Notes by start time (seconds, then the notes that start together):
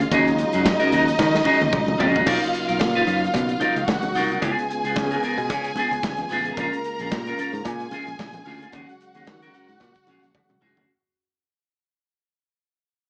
Already playing: C#3 G#3 F4
0.00 muted clean electric guitar stroke, closed hi-hat
0.11 D#2 F#3 C#4 D#4 F#4 G#4 D#5, kick, closed hi-hat, cowbell, muted conga
0.27 muted clean electric guitar stroke, closed hi-hat
0.39 muted clean electric guitar stroke, closed hi-hat
0.53 F#2 C#4 F#4 G#4, closed hi-hat
0.65 muted clean electric guitar stroke, kick, snare, cowbell, high conga
0.80 C#4 F#4 A#4, closed hi-hat
0.92 D#2 C#4 F#4 A#4, closed hi-hat, muted conga
1.07 muted clean electric guitar stroke, closed hi-hat
1.19 D#3, kick, snare, cowbell, muted conga, low conga
1.34 muted clean electric guitar stroke, snare
1.44 C#4 F#4 G#4, muted conga, low conga
1.60 D#2, muted clean electric guitar stroke, high tom
1.72 C#2, muted clean electric guitar stroke, kick, mid tom, cowbell, high conga
1.88 muted clean electric guitar stroke, high conga
1.98 A#1 C#4 F#4 G#4, floor tom, cowbell
2.14 C#4 F#4 G#4, floor tom
2.26 B1 C#3 F#3 A#3 D#4 F4 A#4 F5, kick, crash, cowbell, muted conga
2.42 muted clean electric guitar stroke, closed hi-hat
2.53 muted clean electric guitar stroke, closed hi-hat
2.68 B1 D#4 F4 A#4, closed hi-hat
2.80 A#2, muted clean electric guitar stroke, kick, snare, cowbell, high conga
2.95 D#4 F4 B4, closed hi-hat
3.07 F#2 D#4 F4 B4, closed hi-hat, muted conga
3.22 muted clean electric guitar stroke, closed hi-hat
3.34 B2, muted clean electric guitar stroke, kick, closed hi-hat, cowbell, muted conga, low conga
3.48 muted clean electric guitar stroke, closed hi-hat
3.60 D#4 F4 A#4, closed hi-hat, muted conga, low conga
3.76 C#2, muted clean electric guitar stroke, closed hi-hat
3.87 C#2 F#4 F#5, muted clean electric guitar stroke, kick, snare, cowbell, high conga
4.02 muted clean electric guitar stroke, closed hi-hat, high conga
4.15 C2 D#4 F4 A#4, snare, open hi-hat, high conga
4.30 D#4 F4 A#4, closed hi-hat
4.41 C#2 G#3 B3 F4 G#4 G#5, kick, closed hi-hat, cowbell, muted conga
4.58 muted clean electric guitar stroke, closed hi-hat
4.70 muted clean electric guitar stroke, closed hi-hat
4.84 C#2 B3 F4 G#4, closed hi-hat
4.96 C#3, kick, snare, cowbell, high conga
5.11 B3 F4 A#4, closed hi-hat
5.23 B3 F4 A#4, closed hi-hat, muted conga
5.38 B2, muted clean electric guitar stroke, closed hi-hat
5.50 C#3, muted clean electric guitar stroke, kick, closed hi-hat, cowbell, muted conga, low conga
5.64 muted clean electric guitar stroke, closed hi-hat
5.76 B3 F4 G#4, closed hi-hat, muted conga, low conga
5.91 C#2, muted clean electric guitar stroke, closed hi-hat
6.03 C#2, muted clean electric guitar stroke, kick, snare, cowbell, high conga
6.17 muted clean electric guitar stroke, closed hi-hat, high conga
6.29 A1 B3 F4, snare, open hi-hat, high conga
6.33 G#4
6.46 B3 F4 G#4, closed hi-hat
6.57 A#1 A#3 C#4 F4 G#4 A#4 A#5, kick, closed hi-hat, cowbell, muted conga
6.73 muted clean electric guitar stroke, closed hi-hat
6.84 muted clean electric guitar stroke, closed hi-hat
6.99 A#1 C#4 F4 G#4, closed hi-hat
7.11 A#2, kick, snare, cowbell, high conga
7.26 C#4 F4 A#4, closed hi-hat
7.38 C#4 F4 A#4, closed hi-hat, muted conga
7.53 G#2, muted clean electric guitar stroke, closed hi-hat
7.65 A#2 G#4 G#5, muted clean electric guitar stroke, kick, closed hi-hat, cowbell, muted conga, low conga
7.80 muted clean electric guitar stroke, closed hi-hat
7.91 C#4 F4 G#4, closed hi-hat, muted conga, low conga
8.07 A#1, muted clean electric guitar stroke, closed hi-hat
8.19 A#1, muted clean electric guitar stroke, kick, snare, cowbell, high conga
8.33 muted clean electric guitar stroke, closed hi-hat, high conga
8.46 D2 C#4 F4 G#4, open hi-hat, high conga
8.61 C#4 F4 G#4, closed hi-hat
8.72 D#2 C#3 F#3 C#4 F#4 G#4 F#5, kick, closed hi-hat, cowbell, muted conga
8.89 muted clean electric guitar stroke, closed hi-hat
9.01 muted clean electric guitar stroke, closed hi-hat
9.14 D#2 C#4 F#4 G#4, closed hi-hat
9.27 D#3, muted clean electric guitar stroke, kick, snare, cowbell, high conga
9.42 C#4 F#4 A#4, closed hi-hat
9.54 C#4 F#4 A#4, closed hi-hat, muted conga
9.68 G#2, muted clean electric guitar stroke, closed hi-hat
9.80 A#2, muted clean electric guitar stroke, kick, closed hi-hat, cowbell, muted conga, low conga
9.95 muted clean electric guitar stroke, kick, closed hi-hat
10.07 A#1 C#4 F#4 G#4, closed hi-hat, muted conga, low conga
10.23 A#1, muted clean electric guitar stroke, closed hi-hat
10.35 muted clean electric guitar stroke, kick, high tom, cowbell, high conga
10.49 C2, muted clean electric guitar stroke, mid tom, high conga
10.61 C#2 C#4 F#4 G#4, mid tom, high conga
10.76 D2 C#4 F#4 G#4, floor tom